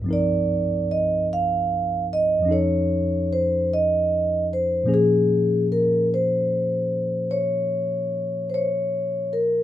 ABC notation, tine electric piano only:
X:1
M:4/4
L:1/8
Q:"Swing" 1/4=50
K:Bbm
V:1 name="Tine electric piano"
[C,,=G,,F,CEB]4 [F,,F,DE=A]4 | [B,,F,B,DA]8 |]